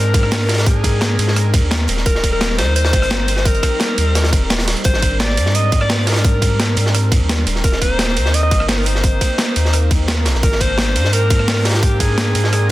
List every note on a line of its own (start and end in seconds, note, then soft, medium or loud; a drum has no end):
0.00 1.17 G#2 medium
0.00 2.02 G#3 medium
0.00 2.02 C4 medium
0.00 2.03 D4 medium
0.00 0.63 A#4 loud
0.00 4.81 A#4 medium
0.14 kick loud
0.14 closed hi-hat medium
0.14 ride medium
0.23 cross-stick soft
0.31 snare loud
0.31 closed hi-hat medium
0.31 open hi-hat medium
0.49 snare loud
0.49 closed hi-hat medium
0.49 ride medium
0.53 snare medium
0.53 closed hi-hat medium
0.58 snare loud
0.58 closed hi-hat medium
0.66 1.58 G#4 medium
0.66 kick loud
0.66 closed hi-hat medium
0.84 kick medium
0.84 closed hi-hat medium
0.84 ride medium
1.01 snare loud
1.01 closed hi-hat medium
1.19 1.61 G#2 medium
1.19 closed hi-hat medium
1.19 ride medium
1.28 snare medium
1.36 cross-stick soft
1.36 closed hi-hat medium
1.54 kick loud
1.54 closed hi-hat medium
1.54 ride medium
1.62 1.87 D#2 medium
1.71 snare loud
1.71 closed hi-hat loud
1.71 closed hi-hat medium
1.88 2.60 D#1 medium
1.88 closed hi-hat medium
1.88 ride medium
1.97 snare soft
2.06 7.60 G3 medium
2.06 4.82 C4 medium
2.06 4.82 D#4 medium
2.06 2.30 A#4 loud
2.06 kick loud
2.06 closed hi-hat medium
2.15 snare medium
2.23 kick medium
2.23 closed hi-hat medium
2.23 ride medium
2.32 2.57 A#4 loud
2.41 snare loud
2.41 closed hi-hat loud
2.50 snare soft
2.58 2.95 D#2 medium
2.58 2.74 C5 loud
2.58 snare loud
2.58 closed hi-hat medium
2.58 ride medium
2.76 3.47 C5 loud
2.76 closed hi-hat medium
2.76 closed hi-hat loud
2.85 snare loud
2.85 closed hi-hat medium
2.93 3.03 F1 loud
2.93 kick loud
2.93 closed hi-hat medium
2.93 ride medium
3.02 3.62 G1 loud
3.02 cross-stick soft
3.02 closed hi-hat medium
3.10 snare loud
3.10 closed hi-hat medium
3.10 closed hi-hat loud
3.28 closed hi-hat medium
3.28 ride medium
3.36 snare medium
3.45 4.50 A#4 loud
3.45 kick loud
3.45 closed hi-hat medium
3.55 closed hi-hat soft
3.63 kick medium
3.63 cross-stick medium
3.63 closed hi-hat medium
3.63 ride medium
3.80 snare loud
3.80 closed hi-hat medium
3.80 closed hi-hat loud
3.98 4.34 D#2 medium
3.98 closed hi-hat medium
3.98 ride medium
4.15 cross-stick soft
4.15 snare loud
4.15 closed hi-hat medium
4.15 closed hi-hat loud
4.24 snare loud
4.24 closed hi-hat medium
4.33 4.75 D#1 medium
4.33 kick loud
4.33 closed hi-hat medium
4.33 ride medium
4.50 snare loud
4.50 closed hi-hat medium
4.50 closed hi-hat loud
4.59 snare loud
4.59 closed hi-hat medium
4.68 snare loud
4.68 closed hi-hat medium
4.68 ride medium
4.76 closed hi-hat soft
4.84 5.39 G#1 loud
4.84 10.39 C4 medium
4.84 7.61 D4 medium
4.84 10.39 A#4 medium
4.84 5.17 C5 loud
4.84 kick loud
4.84 closed hi-hat loud
4.94 snare medium
5.02 kick medium
5.02 closed hi-hat medium
5.02 ride medium
5.20 5.56 D5 loud
5.20 snare loud
5.20 closed hi-hat medium
5.20 closed hi-hat loud
5.30 snare soft
5.37 6.75 G#2 medium
5.37 closed hi-hat medium
5.37 ride medium
5.46 snare medium
5.55 5.80 D#5 loud
5.55 closed hi-hat medium
5.55 closed hi-hat loud
5.72 kick loud
5.72 closed hi-hat medium
5.72 ride medium
5.81 6.09 D5 loud
5.81 cross-stick medium
5.89 snare loud
5.89 closed hi-hat loud
5.89 open hi-hat medium
6.07 7.12 A#4 medium
6.07 snare medium
6.07 closed hi-hat medium
6.07 ride medium
6.11 snare medium
6.11 closed hi-hat medium
6.16 snare loud
6.16 closed hi-hat medium
6.24 kick loud
6.24 closed hi-hat medium
6.24 closed hi-hat loud
6.42 kick medium
6.42 closed hi-hat medium
6.42 ride medium
6.60 snare loud
6.60 closed hi-hat loud
6.60 closed hi-hat medium
6.77 7.19 G#2 medium
6.77 closed hi-hat medium
6.77 ride medium
6.86 snare medium
6.95 cross-stick soft
6.95 closed hi-hat loud
6.95 closed hi-hat medium
7.12 kick loud
7.12 closed hi-hat medium
7.12 ride medium
7.21 7.45 D#2 medium
7.29 snare loud
7.29 closed hi-hat loud
7.29 closed hi-hat medium
7.47 8.18 D#1 medium
7.47 closed hi-hat medium
7.47 ride medium
7.56 snare soft
7.64 12.71 A#3 medium
7.64 10.41 D#4 medium
7.64 7.80 A#4 loud
7.64 kick loud
7.64 closed hi-hat medium
7.72 snare medium
7.82 8.36 C5 loud
7.82 kick medium
7.82 closed hi-hat medium
7.82 ride medium
7.99 snare loud
7.99 closed hi-hat medium
7.99 closed hi-hat loud
8.08 snare soft
8.16 8.53 D#2 medium
8.16 closed hi-hat medium
8.16 ride medium
8.26 snare medium
8.34 8.42 D#5 loud
8.34 closed hi-hat medium
8.43 8.67 D#5 loud
8.51 8.62 F1 loud
8.51 kick loud
8.51 closed hi-hat medium
8.51 ride medium
8.60 9.20 G1 loud
8.60 cross-stick medium
8.68 8.79 C5 loud
8.68 snare loud
8.68 closed hi-hat loud
8.68 open hi-hat medium
8.78 8.88 A#4 medium
8.86 9.91 C5 medium
8.86 closed hi-hat medium
8.86 ride medium
8.95 snare medium
9.03 kick loud
9.03 closed hi-hat medium
9.21 kick medium
9.21 closed hi-hat medium
9.21 ride medium
9.38 snare loud
9.38 closed hi-hat medium
9.56 10.27 D#2 medium
9.56 closed hi-hat medium
9.56 ride medium
9.65 snare medium
9.73 cross-stick soft
9.73 closed hi-hat medium
9.91 kick loud
9.91 closed hi-hat medium
9.91 ride medium
10.08 snare loud
10.08 closed hi-hat medium
10.25 10.34 A#1 loud
10.25 snare loud
10.25 closed hi-hat medium
10.25 ride medium
10.34 10.42 A#1 medium
10.34 snare soft
10.43 10.97 G#1 loud
10.43 12.71 C4 medium
10.43 12.71 D4 medium
10.43 12.71 A#4 medium
10.43 10.62 A#4 loud
10.43 kick loud
10.43 closed hi-hat medium
10.52 snare medium
10.60 11.15 C5 loud
10.60 kick medium
10.60 closed hi-hat medium
10.60 ride medium
10.78 snare loud
10.78 closed hi-hat medium
10.87 snare soft
10.95 12.34 G#2 medium
10.95 closed hi-hat medium
10.95 ride medium
11.04 snare medium
11.13 11.67 A#4 loud
11.13 closed hi-hat medium
11.30 kick loud
11.30 closed hi-hat medium
11.30 ride medium
11.39 cross-stick soft
11.48 snare loud
11.48 closed hi-hat loud
11.48 open hi-hat medium
11.65 12.02 G4 loud
11.65 snare loud
11.65 closed hi-hat medium
11.65 ride medium
11.69 snare medium
11.69 closed hi-hat medium
11.74 snare loud
11.74 closed hi-hat medium
11.83 kick loud
11.83 closed hi-hat loud
11.83 closed hi-hat medium
12.00 12.52 G#4 loud
12.00 kick medium
12.00 closed hi-hat medium
12.00 ride medium
12.18 snare loud
12.18 closed hi-hat medium
12.18 closed hi-hat loud
12.35 12.71 G#2 medium
12.35 closed hi-hat medium
12.35 ride medium
12.44 snare medium
12.52 12.69 G#4 loud
12.52 cross-stick soft
12.52 closed hi-hat medium